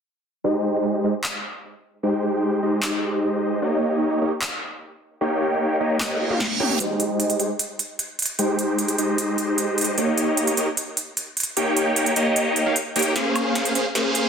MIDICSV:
0, 0, Header, 1, 5, 480
1, 0, Start_track
1, 0, Key_signature, -4, "major"
1, 0, Tempo, 397351
1, 533, Time_signature, 4, 2, 24, 8
1, 17261, End_track
2, 0, Start_track
2, 0, Title_t, "Supersaw synth"
2, 0, Program_c, 0, 81
2, 533, Note_on_c, 0, 63, 87
2, 534, Note_on_c, 0, 56, 96
2, 534, Note_on_c, 0, 67, 87
2, 534, Note_on_c, 0, 72, 86
2, 534, Note_on_c, 0, 75, 103
2, 1225, Note_off_c, 0, 56, 0
2, 1225, Note_off_c, 0, 63, 0
2, 1225, Note_off_c, 0, 67, 0
2, 1225, Note_off_c, 0, 72, 0
2, 1225, Note_off_c, 0, 75, 0
2, 1254, Note_on_c, 0, 56, 74
2, 1254, Note_on_c, 0, 63, 68
2, 1254, Note_on_c, 0, 67, 68
2, 1254, Note_on_c, 0, 72, 66
2, 1254, Note_on_c, 0, 75, 82
2, 1374, Note_off_c, 0, 56, 0
2, 1374, Note_off_c, 0, 63, 0
2, 1374, Note_off_c, 0, 67, 0
2, 1374, Note_off_c, 0, 72, 0
2, 1374, Note_off_c, 0, 75, 0
2, 2454, Note_on_c, 0, 56, 99
2, 2454, Note_on_c, 0, 63, 87
2, 2454, Note_on_c, 0, 67, 90
2, 2454, Note_on_c, 0, 72, 91
2, 2454, Note_on_c, 0, 79, 107
2, 3145, Note_off_c, 0, 56, 0
2, 3145, Note_off_c, 0, 63, 0
2, 3145, Note_off_c, 0, 67, 0
2, 3145, Note_off_c, 0, 72, 0
2, 3145, Note_off_c, 0, 79, 0
2, 3173, Note_on_c, 0, 72, 67
2, 3174, Note_on_c, 0, 56, 72
2, 3174, Note_on_c, 0, 63, 67
2, 3174, Note_on_c, 0, 67, 68
2, 3174, Note_on_c, 0, 75, 85
2, 4345, Note_off_c, 0, 56, 0
2, 4345, Note_off_c, 0, 63, 0
2, 4345, Note_off_c, 0, 67, 0
2, 4345, Note_off_c, 0, 72, 0
2, 4345, Note_off_c, 0, 75, 0
2, 4373, Note_on_c, 0, 58, 93
2, 4373, Note_on_c, 0, 63, 89
2, 4373, Note_on_c, 0, 73, 86
2, 4373, Note_on_c, 0, 75, 107
2, 4374, Note_on_c, 0, 67, 85
2, 5064, Note_off_c, 0, 58, 0
2, 5064, Note_off_c, 0, 73, 0
2, 5064, Note_off_c, 0, 75, 0
2, 5065, Note_off_c, 0, 63, 0
2, 5065, Note_off_c, 0, 67, 0
2, 5093, Note_on_c, 0, 58, 73
2, 5093, Note_on_c, 0, 63, 69
2, 5093, Note_on_c, 0, 67, 71
2, 5093, Note_on_c, 0, 73, 71
2, 5093, Note_on_c, 0, 75, 85
2, 5213, Note_off_c, 0, 58, 0
2, 5213, Note_off_c, 0, 63, 0
2, 5213, Note_off_c, 0, 67, 0
2, 5213, Note_off_c, 0, 73, 0
2, 5214, Note_off_c, 0, 75, 0
2, 6293, Note_on_c, 0, 58, 94
2, 6293, Note_on_c, 0, 63, 90
2, 6293, Note_on_c, 0, 67, 84
2, 6293, Note_on_c, 0, 73, 89
2, 6293, Note_on_c, 0, 79, 108
2, 6984, Note_off_c, 0, 73, 0
2, 6985, Note_off_c, 0, 58, 0
2, 6985, Note_off_c, 0, 63, 0
2, 6985, Note_off_c, 0, 67, 0
2, 6985, Note_off_c, 0, 79, 0
2, 7012, Note_on_c, 0, 58, 74
2, 7012, Note_on_c, 0, 67, 64
2, 7012, Note_on_c, 0, 73, 72
2, 7012, Note_on_c, 0, 75, 82
2, 7013, Note_on_c, 0, 63, 71
2, 7589, Note_off_c, 0, 58, 0
2, 7589, Note_off_c, 0, 67, 0
2, 7589, Note_off_c, 0, 73, 0
2, 7589, Note_off_c, 0, 75, 0
2, 7590, Note_off_c, 0, 63, 0
2, 7614, Note_on_c, 0, 58, 81
2, 7614, Note_on_c, 0, 63, 71
2, 7614, Note_on_c, 0, 67, 74
2, 7614, Note_on_c, 0, 73, 78
2, 7614, Note_on_c, 0, 77, 91
2, 7733, Note_off_c, 0, 58, 0
2, 7733, Note_off_c, 0, 63, 0
2, 7733, Note_off_c, 0, 67, 0
2, 7733, Note_off_c, 0, 73, 0
2, 7733, Note_off_c, 0, 77, 0
2, 7972, Note_on_c, 0, 58, 90
2, 7972, Note_on_c, 0, 63, 88
2, 7972, Note_on_c, 0, 67, 84
2, 7972, Note_on_c, 0, 73, 84
2, 7972, Note_on_c, 0, 79, 105
2, 8184, Note_off_c, 0, 58, 0
2, 8184, Note_off_c, 0, 63, 0
2, 8184, Note_off_c, 0, 67, 0
2, 8184, Note_off_c, 0, 73, 0
2, 8184, Note_off_c, 0, 79, 0
2, 8212, Note_on_c, 0, 75, 108
2, 8213, Note_on_c, 0, 56, 96
2, 8213, Note_on_c, 0, 63, 86
2, 8213, Note_on_c, 0, 67, 87
2, 8213, Note_on_c, 0, 72, 90
2, 8904, Note_off_c, 0, 56, 0
2, 8904, Note_off_c, 0, 63, 0
2, 8904, Note_off_c, 0, 67, 0
2, 8904, Note_off_c, 0, 72, 0
2, 8904, Note_off_c, 0, 75, 0
2, 8932, Note_on_c, 0, 63, 69
2, 8932, Note_on_c, 0, 67, 72
2, 8932, Note_on_c, 0, 72, 73
2, 8932, Note_on_c, 0, 75, 82
2, 8933, Note_on_c, 0, 56, 78
2, 9053, Note_off_c, 0, 56, 0
2, 9053, Note_off_c, 0, 63, 0
2, 9053, Note_off_c, 0, 67, 0
2, 9053, Note_off_c, 0, 72, 0
2, 9053, Note_off_c, 0, 75, 0
2, 10132, Note_on_c, 0, 56, 99
2, 10133, Note_on_c, 0, 63, 93
2, 10133, Note_on_c, 0, 67, 89
2, 10133, Note_on_c, 0, 72, 91
2, 10133, Note_on_c, 0, 79, 106
2, 10824, Note_off_c, 0, 56, 0
2, 10824, Note_off_c, 0, 63, 0
2, 10824, Note_off_c, 0, 67, 0
2, 10824, Note_off_c, 0, 72, 0
2, 10825, Note_off_c, 0, 79, 0
2, 10854, Note_on_c, 0, 56, 75
2, 10854, Note_on_c, 0, 63, 66
2, 10854, Note_on_c, 0, 67, 68
2, 10854, Note_on_c, 0, 72, 72
2, 10854, Note_on_c, 0, 75, 79
2, 12025, Note_off_c, 0, 56, 0
2, 12025, Note_off_c, 0, 63, 0
2, 12025, Note_off_c, 0, 67, 0
2, 12025, Note_off_c, 0, 72, 0
2, 12025, Note_off_c, 0, 75, 0
2, 12052, Note_on_c, 0, 58, 98
2, 12052, Note_on_c, 0, 75, 104
2, 12053, Note_on_c, 0, 63, 86
2, 12053, Note_on_c, 0, 67, 90
2, 12053, Note_on_c, 0, 73, 88
2, 12744, Note_off_c, 0, 58, 0
2, 12744, Note_off_c, 0, 63, 0
2, 12744, Note_off_c, 0, 73, 0
2, 12744, Note_off_c, 0, 75, 0
2, 12745, Note_off_c, 0, 67, 0
2, 12772, Note_on_c, 0, 58, 78
2, 12772, Note_on_c, 0, 63, 73
2, 12772, Note_on_c, 0, 67, 72
2, 12772, Note_on_c, 0, 73, 72
2, 12772, Note_on_c, 0, 75, 84
2, 12893, Note_off_c, 0, 58, 0
2, 12893, Note_off_c, 0, 63, 0
2, 12893, Note_off_c, 0, 67, 0
2, 12893, Note_off_c, 0, 73, 0
2, 12893, Note_off_c, 0, 75, 0
2, 13972, Note_on_c, 0, 58, 100
2, 13972, Note_on_c, 0, 63, 89
2, 13972, Note_on_c, 0, 79, 106
2, 13973, Note_on_c, 0, 67, 93
2, 13973, Note_on_c, 0, 73, 95
2, 14664, Note_off_c, 0, 58, 0
2, 14664, Note_off_c, 0, 63, 0
2, 14664, Note_off_c, 0, 67, 0
2, 14664, Note_off_c, 0, 73, 0
2, 14664, Note_off_c, 0, 79, 0
2, 14692, Note_on_c, 0, 58, 74
2, 14692, Note_on_c, 0, 63, 68
2, 14692, Note_on_c, 0, 67, 68
2, 14692, Note_on_c, 0, 73, 69
2, 14693, Note_on_c, 0, 75, 85
2, 15269, Note_off_c, 0, 58, 0
2, 15269, Note_off_c, 0, 63, 0
2, 15269, Note_off_c, 0, 67, 0
2, 15269, Note_off_c, 0, 73, 0
2, 15269, Note_off_c, 0, 75, 0
2, 15294, Note_on_c, 0, 58, 86
2, 15294, Note_on_c, 0, 63, 77
2, 15294, Note_on_c, 0, 67, 73
2, 15294, Note_on_c, 0, 73, 75
2, 15294, Note_on_c, 0, 77, 93
2, 15413, Note_off_c, 0, 58, 0
2, 15413, Note_off_c, 0, 63, 0
2, 15413, Note_off_c, 0, 67, 0
2, 15413, Note_off_c, 0, 73, 0
2, 15413, Note_off_c, 0, 77, 0
2, 15653, Note_on_c, 0, 58, 100
2, 15653, Note_on_c, 0, 63, 88
2, 15653, Note_on_c, 0, 67, 86
2, 15653, Note_on_c, 0, 73, 88
2, 15653, Note_on_c, 0, 79, 110
2, 15864, Note_off_c, 0, 63, 0
2, 15864, Note_off_c, 0, 67, 0
2, 15864, Note_off_c, 0, 79, 0
2, 15865, Note_off_c, 0, 58, 0
2, 15865, Note_off_c, 0, 73, 0
2, 15892, Note_on_c, 0, 58, 92
2, 15893, Note_on_c, 0, 61, 80
2, 15893, Note_on_c, 0, 68, 88
2, 15893, Note_on_c, 0, 72, 82
2, 15893, Note_on_c, 0, 77, 99
2, 16584, Note_off_c, 0, 58, 0
2, 16584, Note_off_c, 0, 61, 0
2, 16584, Note_off_c, 0, 68, 0
2, 16584, Note_off_c, 0, 72, 0
2, 16584, Note_off_c, 0, 77, 0
2, 16613, Note_on_c, 0, 58, 71
2, 16613, Note_on_c, 0, 61, 67
2, 16613, Note_on_c, 0, 68, 68
2, 16613, Note_on_c, 0, 72, 66
2, 16613, Note_on_c, 0, 77, 81
2, 16733, Note_off_c, 0, 58, 0
2, 16733, Note_off_c, 0, 68, 0
2, 16733, Note_off_c, 0, 72, 0
2, 16733, Note_off_c, 0, 77, 0
2, 16734, Note_off_c, 0, 61, 0
2, 16852, Note_on_c, 0, 58, 97
2, 16852, Note_on_c, 0, 61, 88
2, 16852, Note_on_c, 0, 68, 90
2, 16852, Note_on_c, 0, 72, 87
2, 16852, Note_on_c, 0, 77, 108
2, 17261, Note_off_c, 0, 58, 0
2, 17261, Note_off_c, 0, 61, 0
2, 17261, Note_off_c, 0, 68, 0
2, 17261, Note_off_c, 0, 72, 0
2, 17261, Note_off_c, 0, 77, 0
2, 17261, End_track
3, 0, Start_track
3, 0, Title_t, "Reverse cymbal"
3, 0, Program_c, 1, 119
3, 7253, Note_on_c, 1, 60, 72
3, 8213, Note_off_c, 1, 60, 0
3, 17261, End_track
4, 0, Start_track
4, 0, Title_t, "Riser"
4, 0, Program_c, 2, 103
4, 15892, Note_on_c, 2, 60, 80
4, 17261, Note_off_c, 2, 60, 0
4, 17261, End_track
5, 0, Start_track
5, 0, Title_t, "Drums"
5, 1493, Note_on_c, 9, 39, 106
5, 1614, Note_off_c, 9, 39, 0
5, 3412, Note_on_c, 9, 39, 114
5, 3533, Note_off_c, 9, 39, 0
5, 5332, Note_on_c, 9, 39, 115
5, 5453, Note_off_c, 9, 39, 0
5, 7252, Note_on_c, 9, 38, 57
5, 7252, Note_on_c, 9, 39, 117
5, 7373, Note_off_c, 9, 38, 0
5, 7373, Note_off_c, 9, 39, 0
5, 7374, Note_on_c, 9, 48, 54
5, 7494, Note_off_c, 9, 48, 0
5, 7614, Note_on_c, 9, 47, 67
5, 7733, Note_on_c, 9, 38, 78
5, 7735, Note_off_c, 9, 47, 0
5, 7854, Note_off_c, 9, 38, 0
5, 7974, Note_on_c, 9, 45, 96
5, 8094, Note_off_c, 9, 45, 0
5, 8094, Note_on_c, 9, 45, 84
5, 8214, Note_on_c, 9, 42, 80
5, 8215, Note_off_c, 9, 45, 0
5, 8335, Note_off_c, 9, 42, 0
5, 8453, Note_on_c, 9, 42, 67
5, 8574, Note_off_c, 9, 42, 0
5, 8694, Note_on_c, 9, 42, 77
5, 8815, Note_off_c, 9, 42, 0
5, 8815, Note_on_c, 9, 42, 62
5, 8934, Note_off_c, 9, 42, 0
5, 8934, Note_on_c, 9, 42, 68
5, 9055, Note_off_c, 9, 42, 0
5, 9174, Note_on_c, 9, 42, 82
5, 9294, Note_off_c, 9, 42, 0
5, 9413, Note_on_c, 9, 42, 63
5, 9534, Note_off_c, 9, 42, 0
5, 9653, Note_on_c, 9, 42, 81
5, 9774, Note_off_c, 9, 42, 0
5, 9893, Note_on_c, 9, 42, 50
5, 9933, Note_off_c, 9, 42, 0
5, 9933, Note_on_c, 9, 42, 64
5, 9972, Note_off_c, 9, 42, 0
5, 9972, Note_on_c, 9, 42, 78
5, 10093, Note_off_c, 9, 42, 0
5, 10132, Note_on_c, 9, 42, 80
5, 10253, Note_off_c, 9, 42, 0
5, 10373, Note_on_c, 9, 42, 61
5, 10494, Note_off_c, 9, 42, 0
5, 10613, Note_on_c, 9, 42, 76
5, 10732, Note_off_c, 9, 42, 0
5, 10732, Note_on_c, 9, 42, 64
5, 10853, Note_off_c, 9, 42, 0
5, 10853, Note_on_c, 9, 42, 68
5, 10974, Note_off_c, 9, 42, 0
5, 11093, Note_on_c, 9, 42, 84
5, 11214, Note_off_c, 9, 42, 0
5, 11332, Note_on_c, 9, 42, 68
5, 11453, Note_off_c, 9, 42, 0
5, 11572, Note_on_c, 9, 42, 76
5, 11693, Note_off_c, 9, 42, 0
5, 11813, Note_on_c, 9, 42, 51
5, 11853, Note_off_c, 9, 42, 0
5, 11853, Note_on_c, 9, 42, 66
5, 11892, Note_off_c, 9, 42, 0
5, 11892, Note_on_c, 9, 42, 85
5, 12013, Note_off_c, 9, 42, 0
5, 12052, Note_on_c, 9, 42, 80
5, 12173, Note_off_c, 9, 42, 0
5, 12292, Note_on_c, 9, 42, 64
5, 12413, Note_off_c, 9, 42, 0
5, 12531, Note_on_c, 9, 42, 76
5, 12652, Note_off_c, 9, 42, 0
5, 12652, Note_on_c, 9, 42, 64
5, 12772, Note_off_c, 9, 42, 0
5, 12772, Note_on_c, 9, 42, 67
5, 12893, Note_off_c, 9, 42, 0
5, 13013, Note_on_c, 9, 42, 82
5, 13134, Note_off_c, 9, 42, 0
5, 13252, Note_on_c, 9, 42, 63
5, 13373, Note_off_c, 9, 42, 0
5, 13493, Note_on_c, 9, 42, 76
5, 13614, Note_off_c, 9, 42, 0
5, 13733, Note_on_c, 9, 42, 49
5, 13773, Note_off_c, 9, 42, 0
5, 13773, Note_on_c, 9, 42, 63
5, 13812, Note_off_c, 9, 42, 0
5, 13812, Note_on_c, 9, 42, 80
5, 13933, Note_off_c, 9, 42, 0
5, 13973, Note_on_c, 9, 42, 77
5, 14094, Note_off_c, 9, 42, 0
5, 14213, Note_on_c, 9, 42, 61
5, 14334, Note_off_c, 9, 42, 0
5, 14451, Note_on_c, 9, 42, 77
5, 14572, Note_off_c, 9, 42, 0
5, 14573, Note_on_c, 9, 42, 59
5, 14692, Note_off_c, 9, 42, 0
5, 14692, Note_on_c, 9, 42, 67
5, 14813, Note_off_c, 9, 42, 0
5, 14932, Note_on_c, 9, 42, 74
5, 15053, Note_off_c, 9, 42, 0
5, 15173, Note_on_c, 9, 42, 61
5, 15294, Note_off_c, 9, 42, 0
5, 15413, Note_on_c, 9, 42, 74
5, 15533, Note_off_c, 9, 42, 0
5, 15652, Note_on_c, 9, 42, 45
5, 15693, Note_off_c, 9, 42, 0
5, 15693, Note_on_c, 9, 42, 59
5, 15733, Note_off_c, 9, 42, 0
5, 15733, Note_on_c, 9, 42, 78
5, 15853, Note_off_c, 9, 42, 0
5, 15893, Note_on_c, 9, 38, 50
5, 15893, Note_on_c, 9, 42, 76
5, 16014, Note_off_c, 9, 38, 0
5, 16014, Note_off_c, 9, 42, 0
5, 16134, Note_on_c, 9, 42, 58
5, 16134, Note_on_c, 9, 76, 58
5, 16255, Note_off_c, 9, 42, 0
5, 16255, Note_off_c, 9, 76, 0
5, 16373, Note_on_c, 9, 38, 49
5, 16373, Note_on_c, 9, 42, 72
5, 16493, Note_off_c, 9, 42, 0
5, 16493, Note_on_c, 9, 42, 58
5, 16494, Note_off_c, 9, 38, 0
5, 16613, Note_off_c, 9, 42, 0
5, 16613, Note_on_c, 9, 42, 63
5, 16734, Note_off_c, 9, 42, 0
5, 16854, Note_on_c, 9, 38, 53
5, 16854, Note_on_c, 9, 42, 77
5, 16975, Note_off_c, 9, 38, 0
5, 16975, Note_off_c, 9, 42, 0
5, 17093, Note_on_c, 9, 42, 59
5, 17213, Note_off_c, 9, 42, 0
5, 17261, End_track
0, 0, End_of_file